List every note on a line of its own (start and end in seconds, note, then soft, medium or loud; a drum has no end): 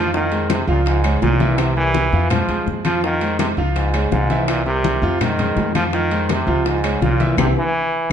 0.00 0.62 F2 medium
0.00 0.11 F3 medium
0.00 0.13 F3 loud
0.00 0.11 F4 medium
0.00 0.11 F5 medium
0.14 0.47 D#3 loud
0.14 0.29 F3 medium
0.14 0.29 F4 medium
0.14 0.29 F5 medium
0.14 high bongo medium
0.32 0.61 G#3 medium
0.32 0.62 G#4 medium
0.32 0.62 C5 medium
0.32 high bongo soft
0.32 high conga soft
0.32 high timbale medium
0.50 0.67 C3 loud
0.50 high bongo medium
0.50 high conga loud
0.50 high timbale medium
0.50 claves medium
0.67 1.18 C#2 loud
0.67 0.85 A#2 medium
0.67 0.98 F3 medium
0.67 0.98 F4 medium
0.67 0.98 F5 medium
0.67 high conga soft
0.86 1.20 G#2 medium
0.86 high bongo medium
0.86 high conga soft
0.86 high timbale medium
1.04 1.19 G#3 medium
1.04 1.19 G#4 medium
1.04 1.20 C#5 medium
1.04 high bongo soft
1.04 high conga soft
1.04 high timbale medium
1.04 claves medium
1.22 2.07 C2 medium
1.22 1.57 A#2 loud
1.22 1.37 F3 medium
1.22 1.37 F4 medium
1.22 1.37 F5 medium
1.22 high bongo soft
1.22 low bongo medium
1.22 high conga medium
1.22 low timbale medium
1.40 1.70 E3 medium
1.40 1.70 E4 medium
1.40 1.70 E5 medium
1.40 high bongo soft
1.40 high conga medium
1.40 high timbale medium
1.56 1.76 C3 loud
1.56 1.61 C#3 medium
1.56 high bongo medium
1.56 high conga soft
1.56 high timbale medium
1.56 claves medium
1.76 2.27 E3 loud
1.76 2.06 G3 medium
1.76 2.07 G4 medium
1.76 2.07 A#4 medium
1.76 high bongo soft
1.76 high conga soft
1.94 high bongo medium
1.94 high conga loud
1.94 high timbale medium
2.12 2.46 F2 loud
2.12 2.28 F3 medium
2.12 2.28 F4 medium
2.12 2.28 F5 medium
2.12 high conga soft
2.30 2.70 F3 medium
2.30 2.46 G#3 medium
2.30 2.46 G#4 medium
2.30 2.46 C5 medium
2.30 high bongo medium
2.30 high conga soft
2.30 low conga medium
2.30 high timbale medium
2.30 claves medium
2.48 2.65 D#2 medium
2.48 2.79 G#3 medium
2.48 2.79 G#4 medium
2.48 2.79 C5 medium
2.48 high bongo soft
2.48 high conga soft
2.48 high timbale medium
2.67 3.52 F2 medium
2.67 high bongo soft
2.67 low bongo medium
2.67 high conga soft
2.85 3.02 F3 loud
2.85 3.00 F3 medium
2.85 3.00 F4 medium
2.85 3.01 F5 medium
2.85 high bongo soft
2.85 high conga medium
2.85 high timbale medium
2.85 claves medium
3.03 3.37 D#3 loud
3.03 3.18 F3 medium
3.03 3.19 F4 medium
3.03 3.19 F5 medium
3.03 high bongo medium
3.03 high conga soft
3.21 3.51 G#3 medium
3.21 3.52 G#4 medium
3.21 3.52 C5 medium
3.21 high bongo soft
3.21 high conga soft
3.21 high timbale medium
3.39 3.48 C3 medium
3.39 high bongo medium
3.39 high conga medium
3.39 high timbale medium
3.39 claves medium
3.57 4.08 C#2 medium
3.57 3.87 F3 medium
3.57 3.88 F4 medium
3.57 3.88 F5 medium
3.57 high conga soft
3.76 4.10 G#2 medium
3.76 high bongo medium
3.76 high conga soft
3.76 high timbale medium
3.94 4.09 G#3 medium
3.94 4.09 G#4 medium
3.94 4.09 C#5 medium
3.94 high bongo soft
3.94 high conga soft
3.94 high timbale medium
3.94 claves medium
4.12 4.97 C2 medium
4.12 4.49 G#2 loud
4.12 4.27 F3 medium
4.12 4.27 F4 medium
4.12 4.27 F5 medium
4.12 high bongo soft
4.12 low bongo medium
4.12 high conga medium
4.30 4.60 E3 medium
4.30 4.60 E4 medium
4.30 4.60 E5 medium
4.30 high bongo soft
4.30 high conga medium
4.30 high timbale medium
4.48 4.65 A#2 loud
4.48 high bongo medium
4.48 high conga soft
4.48 high timbale loud
4.48 claves medium
4.66 5.17 C3 loud
4.66 4.96 G3 medium
4.66 4.96 G4 medium
4.66 4.97 A#4 medium
4.66 high bongo soft
4.66 high conga soft
4.84 high bongo medium
4.84 high conga loud
4.84 high timbale medium
5.02 5.53 F2 medium
5.02 5.18 F3 medium
5.02 5.18 F4 medium
5.02 5.18 F5 medium
5.02 high conga soft
5.21 5.72 D#3 medium
5.21 5.36 G#3 medium
5.21 5.36 G#4 medium
5.21 5.36 C5 medium
5.21 high bongo medium
5.21 high conga soft
5.21 low conga medium
5.21 high timbale loud
5.21 claves medium
5.39 5.69 G#3 medium
5.39 5.69 G#4 medium
5.39 5.69 C5 medium
5.39 high bongo soft
5.39 high conga soft
5.39 low conga medium
5.39 high timbale medium
5.56 6.42 F2 medium
5.56 high bongo soft
5.56 low bongo medium
5.56 high conga soft
5.56 low timbale medium
5.75 5.90 F3 medium
5.75 5.84 F3 loud
5.75 5.90 F4 medium
5.75 5.90 F5 medium
5.75 high bongo soft
5.75 high conga medium
5.75 high timbale medium
5.75 claves medium
5.93 6.32 D#3 loud
5.93 6.08 F3 medium
5.93 6.08 F4 medium
5.93 6.08 F5 medium
5.93 high bongo medium
6.11 6.41 G#3 medium
6.11 6.41 G#4 medium
6.11 6.42 C5 medium
6.11 high bongo soft
6.11 high conga soft
6.11 high timbale medium
6.29 6.68 C3 medium
6.29 high bongo medium
6.29 high conga loud
6.29 high timbale medium
6.29 claves medium
6.47 6.98 C#2 medium
6.47 6.77 F3 medium
6.47 6.77 F4 medium
6.47 6.78 F5 medium
6.47 high conga soft
6.66 7.02 G#2 medium
6.66 high bongo medium
6.66 high conga soft
6.66 high timbale medium
6.84 6.99 G#3 medium
6.84 6.99 G#4 medium
6.84 6.99 C#5 medium
6.84 high bongo soft
6.84 high conga soft
6.84 high timbale loud
6.84 claves medium
7.01 7.35 C2 medium
7.01 7.37 A#2 medium
7.01 7.17 F3 medium
7.01 7.17 F4 medium
7.01 7.17 F5 medium
7.01 high bongo soft
7.01 low bongo medium
7.01 high conga medium
7.20 7.35 E3 medium
7.20 7.35 E4 medium
7.20 7.35 E5 medium
7.20 high bongo soft
7.20 high conga medium
7.20 high timbale medium
7.37 7.51 C2 loud
7.37 7.48 C3 medium
7.37 7.50 C4 medium
7.37 7.50 E4 medium
7.37 7.50 G4 medium
7.37 low bongo loud
7.37 high conga loud
7.37 high timbale loud
7.37 claves loud
7.58 8.08 E3 loud